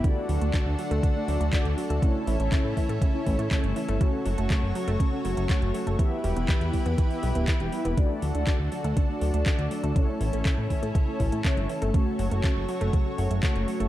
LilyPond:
<<
  \new Staff \with { instrumentName = "Analog polysynth" } { \time 4/4 \key a \mixolydian \tempo 4 = 121 <a d' fis' d''>8. <a d' fis' d''>8. <a d' fis' d''>16 r8 <a d' fis' d''>8. <a d' fis' d''>4 | <a cis' e' cis''>8. <a cis' e' cis''>8. <a cis' e' cis''>16 r8 <a cis' e' cis''>8. <a cis' e' cis''>4 | <a cis' fis' cis''>8. <a cis' fis' cis''>8. <a cis' fis' cis''>16 r8 <a cis' fis' cis''>8. <a cis' fis' cis''>4 | <b e' g' e''>8. <b e' g' e''>8. <b e' g' e''>16 r8 <b e' g' e''>8. r16 <b e' g' g''>16 <b e' g' e''>16 r16 |
<a d' fis' d''>8. <a d' fis' d''>8. <a d' fis' d''>16 r8 <a d' fis' d''>8. <a d' d''>4 | <a cis' e' cis''>8. <a cis' e' cis''>8. <a cis' e' cis''>16 r8 <a cis' e' cis''>8. <a cis' e' cis''>4 | <a cis' fis' cis''>8. <a cis' fis' cis''>8. <a cis' fis' cis''>16 r8 <a cis' fis' cis''>8. <a cis' fis' cis''>4 | }
  \new Staff \with { instrumentName = "Analog synth pad" } { \time 4/4 \key a \mixolydian << { a'1~ | a'1 | cis''1 | b'1 |
a'1~ | a'1 | cis''1 | } \\ { <d d' fis'>1 | <cis' e'>1 | <fis fis'>1 | <e e' g'>1 |
<d d' fis'>1 | <cis' e'>1 | <fis fis'>1 | } >> }
  \new Staff \with { instrumentName = "Synth arpeggio sound" } { \clef bass \time 4/4 \key a \mixolydian d16 r16 fis16 a16 d16 r16 fis16 a16 d16 r16 fis16 a16 d16 r16 fis16 a16 | cis16 r16 e16 a16 cis16 r16 e16 a16 cis16 r16 e16 a16 cis16 r16 e16 a16 | cis16 r16 fis16 a16 cis16 r16 fis16 a16 cis16 r16 fis16 a16 cis16 r16 fis16 a16 | e16 r16 g16 b16 e16 r16 g16 b16 e16 r16 g16 b16 e16 r16 g16 b16 |
d16 r16 fis16 a16 d16 r16 fis16 a16 d16 r16 fis16 a16 d16 r16 fis16 a16 | cis16 r16 e16 a16 cis16 r16 e16 a16 cis16 r16 e16 a16 cis16 r16 e16 a16 | cis16 r16 fis16 a16 cis16 r16 fis16 a16 cis16 r16 fis16 a16 cis16 r16 fis16 a16 | }
  \new Staff \with { instrumentName = "Analog synth bass" } { \clef bass \time 4/4 \key a \mixolydian r8 d,16 d,16 r16 d,16 r16 d,16 r8 d,16 d,16 r16 d,16 r16 d,16 | r8 a,,16 a,,16 r16 a,16 r16 a,16 r8 a,,16 a,16 r16 g,,16 r16 g,,16 | r8 fis,,16 fis,,16 r16 fis,,16 r16 fis,,16 r8 fis,,16 fis,,16 r16 fis,,16 r16 fis,,16 | r8 e,,16 e,,16 r16 e,16 r16 e,16 r8 b,,16 d,,16 r16 e,,16 r16 e,,16 |
r8 d,16 d,16 r16 d,16 r16 d,16 r8 d,16 d,16 r16 d,16 r16 d,16 | r8 a,,16 a,,16 r16 a,16 r16 a,16 r8 a,,16 a,16 r16 g,,16 r16 g,,16 | r8 fis,,16 fis,,16 r16 fis,,16 r16 fis,,16 r8 fis,,16 fis,,16 r16 fis,,16 r16 fis,,16 | }
  \new DrumStaff \with { instrumentName = "Drums" } \drummode { \time 4/4 <hh bd>8 hho16 hh16 <hc hh bd>8 hho16 hh16 <hh bd>8 hho16 hh16 <hc hh bd>16 hh16 hho16 hh16 | <hh bd>8 hho16 hh16 <hc hh bd>8 <hho bd>16 hh16 <hh bd>8 <hho bd>16 hh16 <hc hh bd>16 hh16 hho16 hh16 | <hh bd>8 hho16 hh16 <hc hh bd>8 hho16 hh16 <hh bd>8 hho16 hh16 <hc hh bd>16 hh16 hho16 hh16 | <hh bd>8 hho16 hh16 <hc hh bd>16 hh16 <hho bd>16 hh16 <hh bd>16 hho16 hho16 hh16 <hc hh bd>16 hh16 hho16 hh16 |
<hh bd>8 hho16 hh16 <hc hh bd>8 hho16 hh16 <hh bd>8 hho16 hh16 <hc hh bd>16 hh16 hho16 hh16 | <hh bd>8 hho16 hh16 <hc hh bd>8 <hho bd>16 hh16 <hh bd>8 <hho bd>16 hh16 <hc hh bd>16 hh16 hho16 hh16 | <hh bd>8 hho16 hh16 <hc hh bd>8 hho16 hh16 <hh bd>8 hho16 hh16 <hc hh bd>16 hh16 hho16 hh16 | }
>>